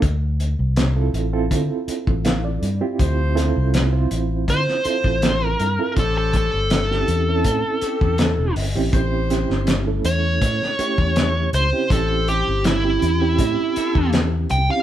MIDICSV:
0, 0, Header, 1, 7, 480
1, 0, Start_track
1, 0, Tempo, 741656
1, 20, Time_signature, 4, 2, 24, 8
1, 9597, End_track
2, 0, Start_track
2, 0, Title_t, "Lead electric guitar"
2, 0, Program_c, 0, 29
2, 2912, Note_on_c, 0, 72, 113
2, 3540, Note_off_c, 0, 72, 0
2, 3540, Note_on_c, 0, 70, 113
2, 3840, Note_off_c, 0, 70, 0
2, 3879, Note_on_c, 0, 69, 90
2, 3992, Note_off_c, 0, 69, 0
2, 3999, Note_on_c, 0, 69, 79
2, 4104, Note_off_c, 0, 69, 0
2, 4121, Note_on_c, 0, 69, 92
2, 5526, Note_off_c, 0, 69, 0
2, 6508, Note_on_c, 0, 73, 85
2, 7440, Note_off_c, 0, 73, 0
2, 7473, Note_on_c, 0, 72, 88
2, 7701, Note_off_c, 0, 72, 0
2, 7716, Note_on_c, 0, 69, 71
2, 7943, Note_off_c, 0, 69, 0
2, 7951, Note_on_c, 0, 67, 78
2, 8180, Note_off_c, 0, 67, 0
2, 8200, Note_on_c, 0, 64, 106
2, 9127, Note_off_c, 0, 64, 0
2, 9390, Note_on_c, 0, 79, 100
2, 9509, Note_off_c, 0, 79, 0
2, 9517, Note_on_c, 0, 77, 82
2, 9597, Note_off_c, 0, 77, 0
2, 9597, End_track
3, 0, Start_track
3, 0, Title_t, "Horn section"
3, 0, Program_c, 1, 61
3, 1940, Note_on_c, 1, 53, 86
3, 1942, Note_on_c, 1, 72, 103
3, 2420, Note_off_c, 1, 53, 0
3, 2421, Note_off_c, 1, 72, 0
3, 3148, Note_on_c, 1, 53, 63
3, 3150, Note_on_c, 1, 72, 82
3, 3510, Note_off_c, 1, 53, 0
3, 3511, Note_off_c, 1, 72, 0
3, 3862, Note_on_c, 1, 61, 78
3, 3862, Note_on_c, 1, 67, 80
3, 3867, Note_on_c, 1, 72, 84
3, 4341, Note_off_c, 1, 61, 0
3, 4341, Note_off_c, 1, 67, 0
3, 4344, Note_off_c, 1, 72, 0
3, 5061, Note_on_c, 1, 67, 84
3, 5065, Note_on_c, 1, 69, 91
3, 5427, Note_off_c, 1, 67, 0
3, 5429, Note_off_c, 1, 69, 0
3, 5777, Note_on_c, 1, 67, 77
3, 5783, Note_on_c, 1, 72, 113
3, 6260, Note_off_c, 1, 67, 0
3, 6263, Note_off_c, 1, 72, 0
3, 6982, Note_on_c, 1, 67, 64
3, 6984, Note_on_c, 1, 73, 79
3, 7348, Note_off_c, 1, 67, 0
3, 7349, Note_off_c, 1, 73, 0
3, 7709, Note_on_c, 1, 67, 71
3, 7711, Note_on_c, 1, 72, 86
3, 8187, Note_off_c, 1, 67, 0
3, 8188, Note_off_c, 1, 72, 0
3, 8909, Note_on_c, 1, 67, 86
3, 8911, Note_on_c, 1, 69, 97
3, 9272, Note_off_c, 1, 67, 0
3, 9273, Note_off_c, 1, 69, 0
3, 9597, End_track
4, 0, Start_track
4, 0, Title_t, "Reed electric piano"
4, 0, Program_c, 2, 4
4, 620, Note_on_c, 2, 65, 72
4, 621, Note_on_c, 2, 60, 76
4, 622, Note_on_c, 2, 64, 72
4, 623, Note_on_c, 2, 69, 91
4, 849, Note_off_c, 2, 65, 0
4, 850, Note_off_c, 2, 60, 0
4, 850, Note_off_c, 2, 64, 0
4, 851, Note_off_c, 2, 69, 0
4, 861, Note_on_c, 2, 60, 97
4, 862, Note_on_c, 2, 65, 80
4, 863, Note_on_c, 2, 69, 98
4, 864, Note_on_c, 2, 64, 79
4, 1454, Note_on_c, 2, 77, 65
4, 1574, Note_off_c, 2, 77, 0
4, 1582, Note_on_c, 2, 74, 73
4, 1769, Note_off_c, 2, 60, 0
4, 1769, Note_off_c, 2, 65, 0
4, 1770, Note_off_c, 2, 64, 0
4, 1770, Note_off_c, 2, 69, 0
4, 1818, Note_on_c, 2, 64, 91
4, 1819, Note_on_c, 2, 60, 99
4, 1821, Note_on_c, 2, 65, 88
4, 1821, Note_on_c, 2, 67, 99
4, 1913, Note_off_c, 2, 74, 0
4, 2158, Note_off_c, 2, 60, 0
4, 2158, Note_off_c, 2, 64, 0
4, 2159, Note_off_c, 2, 65, 0
4, 2159, Note_off_c, 2, 67, 0
4, 2170, Note_on_c, 2, 60, 95
4, 2171, Note_on_c, 2, 64, 82
4, 2173, Note_on_c, 2, 69, 94
4, 2175, Note_on_c, 2, 65, 83
4, 2520, Note_off_c, 2, 60, 0
4, 2520, Note_off_c, 2, 64, 0
4, 2522, Note_off_c, 2, 65, 0
4, 2522, Note_off_c, 2, 69, 0
4, 2540, Note_on_c, 2, 60, 88
4, 2541, Note_on_c, 2, 64, 81
4, 2541, Note_on_c, 2, 65, 76
4, 2542, Note_on_c, 2, 72, 90
4, 3107, Note_off_c, 2, 60, 0
4, 3107, Note_off_c, 2, 64, 0
4, 3107, Note_off_c, 2, 65, 0
4, 3108, Note_off_c, 2, 72, 0
4, 3139, Note_on_c, 2, 64, 73
4, 3139, Note_on_c, 2, 65, 73
4, 3140, Note_on_c, 2, 60, 67
4, 3140, Note_on_c, 2, 69, 81
4, 3711, Note_off_c, 2, 64, 0
4, 3711, Note_off_c, 2, 65, 0
4, 3712, Note_off_c, 2, 60, 0
4, 3712, Note_off_c, 2, 69, 0
4, 3748, Note_on_c, 2, 60, 76
4, 3749, Note_on_c, 2, 69, 84
4, 3750, Note_on_c, 2, 64, 77
4, 3751, Note_on_c, 2, 65, 74
4, 3861, Note_off_c, 2, 60, 0
4, 3862, Note_off_c, 2, 64, 0
4, 3862, Note_off_c, 2, 69, 0
4, 3863, Note_off_c, 2, 65, 0
4, 4474, Note_on_c, 2, 60, 64
4, 4474, Note_on_c, 2, 61, 60
4, 4475, Note_on_c, 2, 64, 66
4, 4477, Note_on_c, 2, 67, 79
4, 4697, Note_off_c, 2, 60, 0
4, 4697, Note_off_c, 2, 61, 0
4, 4697, Note_off_c, 2, 64, 0
4, 4698, Note_off_c, 2, 67, 0
4, 4714, Note_on_c, 2, 61, 83
4, 4717, Note_on_c, 2, 60, 80
4, 4717, Note_on_c, 2, 64, 78
4, 4717, Note_on_c, 2, 69, 99
4, 5616, Note_off_c, 2, 61, 0
4, 5618, Note_off_c, 2, 60, 0
4, 5618, Note_off_c, 2, 64, 0
4, 5618, Note_off_c, 2, 69, 0
4, 5666, Note_on_c, 2, 64, 93
4, 5667, Note_on_c, 2, 60, 98
4, 5667, Note_on_c, 2, 61, 84
4, 5667, Note_on_c, 2, 67, 104
4, 6003, Note_off_c, 2, 60, 0
4, 6003, Note_off_c, 2, 61, 0
4, 6003, Note_off_c, 2, 64, 0
4, 6003, Note_off_c, 2, 67, 0
4, 6021, Note_on_c, 2, 60, 89
4, 6023, Note_on_c, 2, 61, 77
4, 6025, Note_on_c, 2, 64, 78
4, 6026, Note_on_c, 2, 67, 98
4, 6367, Note_off_c, 2, 60, 0
4, 6367, Note_off_c, 2, 61, 0
4, 6369, Note_off_c, 2, 64, 0
4, 6369, Note_off_c, 2, 67, 0
4, 6387, Note_on_c, 2, 57, 65
4, 6390, Note_on_c, 2, 61, 62
4, 6390, Note_on_c, 2, 69, 73
4, 6391, Note_on_c, 2, 64, 64
4, 6951, Note_off_c, 2, 57, 0
4, 6953, Note_off_c, 2, 61, 0
4, 6953, Note_off_c, 2, 64, 0
4, 6953, Note_off_c, 2, 69, 0
4, 6983, Note_on_c, 2, 61, 73
4, 6983, Note_on_c, 2, 67, 84
4, 6984, Note_on_c, 2, 57, 72
4, 6985, Note_on_c, 2, 64, 66
4, 7555, Note_off_c, 2, 57, 0
4, 7555, Note_off_c, 2, 61, 0
4, 7555, Note_off_c, 2, 67, 0
4, 7556, Note_off_c, 2, 64, 0
4, 7589, Note_on_c, 2, 60, 72
4, 7590, Note_on_c, 2, 61, 74
4, 7592, Note_on_c, 2, 67, 92
4, 7594, Note_on_c, 2, 64, 76
4, 8269, Note_off_c, 2, 60, 0
4, 8269, Note_off_c, 2, 61, 0
4, 8270, Note_off_c, 2, 67, 0
4, 8271, Note_off_c, 2, 64, 0
4, 8310, Note_on_c, 2, 61, 63
4, 8311, Note_on_c, 2, 60, 68
4, 8313, Note_on_c, 2, 64, 58
4, 8314, Note_on_c, 2, 67, 76
4, 8536, Note_off_c, 2, 60, 0
4, 8536, Note_off_c, 2, 61, 0
4, 8538, Note_off_c, 2, 64, 0
4, 8538, Note_off_c, 2, 67, 0
4, 8551, Note_on_c, 2, 60, 72
4, 8553, Note_on_c, 2, 67, 86
4, 8554, Note_on_c, 2, 61, 65
4, 8554, Note_on_c, 2, 64, 61
4, 9457, Note_off_c, 2, 60, 0
4, 9458, Note_off_c, 2, 61, 0
4, 9458, Note_off_c, 2, 64, 0
4, 9458, Note_off_c, 2, 67, 0
4, 9509, Note_on_c, 2, 61, 85
4, 9510, Note_on_c, 2, 60, 77
4, 9510, Note_on_c, 2, 64, 83
4, 9513, Note_on_c, 2, 67, 94
4, 9597, Note_off_c, 2, 60, 0
4, 9597, Note_off_c, 2, 61, 0
4, 9597, Note_off_c, 2, 64, 0
4, 9597, Note_off_c, 2, 67, 0
4, 9597, End_track
5, 0, Start_track
5, 0, Title_t, "Fingered electric bass"
5, 0, Program_c, 3, 33
5, 15, Note_on_c, 3, 38, 101
5, 345, Note_off_c, 3, 38, 0
5, 382, Note_on_c, 3, 36, 100
5, 702, Note_off_c, 3, 36, 0
5, 735, Note_on_c, 3, 33, 82
5, 953, Note_off_c, 3, 33, 0
5, 976, Note_on_c, 3, 50, 87
5, 1091, Note_off_c, 3, 50, 0
5, 1342, Note_on_c, 3, 33, 81
5, 1662, Note_off_c, 3, 33, 0
5, 1697, Note_on_c, 3, 43, 91
5, 1811, Note_off_c, 3, 43, 0
5, 1939, Note_on_c, 3, 38, 99
5, 2268, Note_off_c, 3, 38, 0
5, 2307, Note_on_c, 3, 36, 106
5, 2625, Note_off_c, 3, 36, 0
5, 2662, Note_on_c, 3, 33, 88
5, 2876, Note_off_c, 3, 33, 0
5, 2898, Note_on_c, 3, 50, 91
5, 3011, Note_off_c, 3, 50, 0
5, 3264, Note_on_c, 3, 33, 88
5, 3583, Note_off_c, 3, 33, 0
5, 3623, Note_on_c, 3, 43, 86
5, 3734, Note_off_c, 3, 43, 0
5, 3862, Note_on_c, 3, 33, 112
5, 4190, Note_off_c, 3, 33, 0
5, 4230, Note_on_c, 3, 31, 98
5, 4547, Note_off_c, 3, 31, 0
5, 4583, Note_on_c, 3, 40, 96
5, 4798, Note_off_c, 3, 40, 0
5, 4819, Note_on_c, 3, 45, 105
5, 4933, Note_off_c, 3, 45, 0
5, 5186, Note_on_c, 3, 40, 78
5, 5402, Note_off_c, 3, 40, 0
5, 5424, Note_on_c, 3, 28, 80
5, 5528, Note_off_c, 3, 28, 0
5, 5540, Note_on_c, 3, 31, 78
5, 5653, Note_off_c, 3, 31, 0
5, 5665, Note_on_c, 3, 33, 83
5, 5769, Note_off_c, 3, 33, 0
5, 5779, Note_on_c, 3, 33, 105
5, 6108, Note_off_c, 3, 33, 0
5, 6147, Note_on_c, 3, 31, 99
5, 6466, Note_off_c, 3, 31, 0
5, 6500, Note_on_c, 3, 40, 95
5, 6717, Note_off_c, 3, 40, 0
5, 6741, Note_on_c, 3, 45, 100
5, 6854, Note_off_c, 3, 45, 0
5, 7107, Note_on_c, 3, 40, 82
5, 7426, Note_off_c, 3, 40, 0
5, 7462, Note_on_c, 3, 37, 78
5, 7575, Note_off_c, 3, 37, 0
5, 7704, Note_on_c, 3, 33, 109
5, 8032, Note_off_c, 3, 33, 0
5, 8072, Note_on_c, 3, 31, 105
5, 8389, Note_off_c, 3, 31, 0
5, 8428, Note_on_c, 3, 40, 93
5, 8642, Note_off_c, 3, 40, 0
5, 8665, Note_on_c, 3, 45, 101
5, 8777, Note_off_c, 3, 45, 0
5, 9031, Note_on_c, 3, 40, 82
5, 9349, Note_off_c, 3, 40, 0
5, 9390, Note_on_c, 3, 36, 90
5, 9500, Note_off_c, 3, 36, 0
5, 9597, End_track
6, 0, Start_track
6, 0, Title_t, "Muted fingered electric bass strokes"
6, 1215, Note_on_c, 9, 29, 39
6, 1280, Note_off_c, 9, 29, 0
6, 3141, Note_on_c, 9, 29, 37
6, 3206, Note_off_c, 9, 29, 0
6, 5061, Note_on_c, 9, 29, 35
6, 5126, Note_off_c, 9, 29, 0
6, 6982, Note_on_c, 9, 29, 39
6, 7047, Note_off_c, 9, 29, 0
6, 8911, Note_on_c, 9, 29, 37
6, 8976, Note_off_c, 9, 29, 0
6, 9597, End_track
7, 0, Start_track
7, 0, Title_t, "Drums"
7, 14, Note_on_c, 9, 36, 85
7, 14, Note_on_c, 9, 42, 72
7, 79, Note_off_c, 9, 36, 0
7, 79, Note_off_c, 9, 42, 0
7, 258, Note_on_c, 9, 42, 56
7, 323, Note_off_c, 9, 42, 0
7, 494, Note_on_c, 9, 42, 79
7, 501, Note_on_c, 9, 38, 111
7, 559, Note_off_c, 9, 42, 0
7, 565, Note_off_c, 9, 38, 0
7, 740, Note_on_c, 9, 42, 60
7, 804, Note_off_c, 9, 42, 0
7, 977, Note_on_c, 9, 36, 75
7, 978, Note_on_c, 9, 42, 80
7, 1042, Note_off_c, 9, 36, 0
7, 1043, Note_off_c, 9, 42, 0
7, 1218, Note_on_c, 9, 42, 67
7, 1282, Note_off_c, 9, 42, 0
7, 1342, Note_on_c, 9, 36, 80
7, 1406, Note_off_c, 9, 36, 0
7, 1454, Note_on_c, 9, 42, 81
7, 1460, Note_on_c, 9, 38, 105
7, 1519, Note_off_c, 9, 42, 0
7, 1525, Note_off_c, 9, 38, 0
7, 1700, Note_on_c, 9, 42, 58
7, 1765, Note_off_c, 9, 42, 0
7, 1938, Note_on_c, 9, 36, 97
7, 1938, Note_on_c, 9, 42, 74
7, 2003, Note_off_c, 9, 36, 0
7, 2003, Note_off_c, 9, 42, 0
7, 2182, Note_on_c, 9, 42, 64
7, 2188, Note_on_c, 9, 38, 33
7, 2247, Note_off_c, 9, 42, 0
7, 2253, Note_off_c, 9, 38, 0
7, 2419, Note_on_c, 9, 42, 87
7, 2426, Note_on_c, 9, 38, 106
7, 2484, Note_off_c, 9, 42, 0
7, 2490, Note_off_c, 9, 38, 0
7, 2660, Note_on_c, 9, 42, 65
7, 2724, Note_off_c, 9, 42, 0
7, 2899, Note_on_c, 9, 36, 75
7, 2901, Note_on_c, 9, 42, 79
7, 2964, Note_off_c, 9, 36, 0
7, 2965, Note_off_c, 9, 42, 0
7, 3031, Note_on_c, 9, 38, 32
7, 3095, Note_off_c, 9, 38, 0
7, 3137, Note_on_c, 9, 42, 70
7, 3202, Note_off_c, 9, 42, 0
7, 3264, Note_on_c, 9, 36, 74
7, 3328, Note_off_c, 9, 36, 0
7, 3380, Note_on_c, 9, 42, 84
7, 3386, Note_on_c, 9, 38, 96
7, 3445, Note_off_c, 9, 42, 0
7, 3451, Note_off_c, 9, 38, 0
7, 3621, Note_on_c, 9, 42, 60
7, 3686, Note_off_c, 9, 42, 0
7, 3860, Note_on_c, 9, 42, 62
7, 3861, Note_on_c, 9, 36, 88
7, 3925, Note_off_c, 9, 42, 0
7, 3926, Note_off_c, 9, 36, 0
7, 4099, Note_on_c, 9, 42, 56
7, 4101, Note_on_c, 9, 36, 72
7, 4164, Note_off_c, 9, 42, 0
7, 4166, Note_off_c, 9, 36, 0
7, 4338, Note_on_c, 9, 42, 83
7, 4344, Note_on_c, 9, 38, 118
7, 4402, Note_off_c, 9, 42, 0
7, 4409, Note_off_c, 9, 38, 0
7, 4474, Note_on_c, 9, 38, 32
7, 4539, Note_off_c, 9, 38, 0
7, 4581, Note_on_c, 9, 42, 59
7, 4646, Note_off_c, 9, 42, 0
7, 4818, Note_on_c, 9, 42, 84
7, 4820, Note_on_c, 9, 36, 71
7, 4883, Note_off_c, 9, 42, 0
7, 4885, Note_off_c, 9, 36, 0
7, 5057, Note_on_c, 9, 42, 63
7, 5122, Note_off_c, 9, 42, 0
7, 5186, Note_on_c, 9, 36, 81
7, 5250, Note_off_c, 9, 36, 0
7, 5295, Note_on_c, 9, 42, 82
7, 5302, Note_on_c, 9, 38, 112
7, 5360, Note_off_c, 9, 42, 0
7, 5366, Note_off_c, 9, 38, 0
7, 5541, Note_on_c, 9, 46, 82
7, 5605, Note_off_c, 9, 46, 0
7, 5778, Note_on_c, 9, 42, 71
7, 5780, Note_on_c, 9, 36, 100
7, 5843, Note_off_c, 9, 42, 0
7, 5845, Note_off_c, 9, 36, 0
7, 6021, Note_on_c, 9, 42, 60
7, 6028, Note_on_c, 9, 38, 32
7, 6086, Note_off_c, 9, 42, 0
7, 6092, Note_off_c, 9, 38, 0
7, 6150, Note_on_c, 9, 38, 36
7, 6215, Note_off_c, 9, 38, 0
7, 6258, Note_on_c, 9, 42, 86
7, 6264, Note_on_c, 9, 38, 109
7, 6323, Note_off_c, 9, 42, 0
7, 6329, Note_off_c, 9, 38, 0
7, 6501, Note_on_c, 9, 42, 69
7, 6566, Note_off_c, 9, 42, 0
7, 6741, Note_on_c, 9, 36, 84
7, 6741, Note_on_c, 9, 42, 83
7, 6806, Note_off_c, 9, 36, 0
7, 6806, Note_off_c, 9, 42, 0
7, 6875, Note_on_c, 9, 38, 34
7, 6939, Note_off_c, 9, 38, 0
7, 6982, Note_on_c, 9, 42, 74
7, 7047, Note_off_c, 9, 42, 0
7, 7108, Note_on_c, 9, 36, 80
7, 7172, Note_off_c, 9, 36, 0
7, 7222, Note_on_c, 9, 42, 84
7, 7228, Note_on_c, 9, 38, 105
7, 7287, Note_off_c, 9, 42, 0
7, 7293, Note_off_c, 9, 38, 0
7, 7463, Note_on_c, 9, 42, 64
7, 7528, Note_off_c, 9, 42, 0
7, 7704, Note_on_c, 9, 36, 101
7, 7707, Note_on_c, 9, 42, 77
7, 7769, Note_off_c, 9, 36, 0
7, 7772, Note_off_c, 9, 42, 0
7, 7946, Note_on_c, 9, 42, 55
7, 8011, Note_off_c, 9, 42, 0
7, 8182, Note_on_c, 9, 42, 83
7, 8189, Note_on_c, 9, 38, 112
7, 8247, Note_off_c, 9, 42, 0
7, 8254, Note_off_c, 9, 38, 0
7, 8428, Note_on_c, 9, 42, 59
7, 8493, Note_off_c, 9, 42, 0
7, 8663, Note_on_c, 9, 42, 83
7, 8664, Note_on_c, 9, 36, 73
7, 8728, Note_off_c, 9, 42, 0
7, 8729, Note_off_c, 9, 36, 0
7, 8906, Note_on_c, 9, 42, 67
7, 8971, Note_off_c, 9, 42, 0
7, 9030, Note_on_c, 9, 36, 77
7, 9095, Note_off_c, 9, 36, 0
7, 9143, Note_on_c, 9, 42, 69
7, 9149, Note_on_c, 9, 38, 108
7, 9207, Note_off_c, 9, 42, 0
7, 9214, Note_off_c, 9, 38, 0
7, 9381, Note_on_c, 9, 42, 57
7, 9446, Note_off_c, 9, 42, 0
7, 9597, End_track
0, 0, End_of_file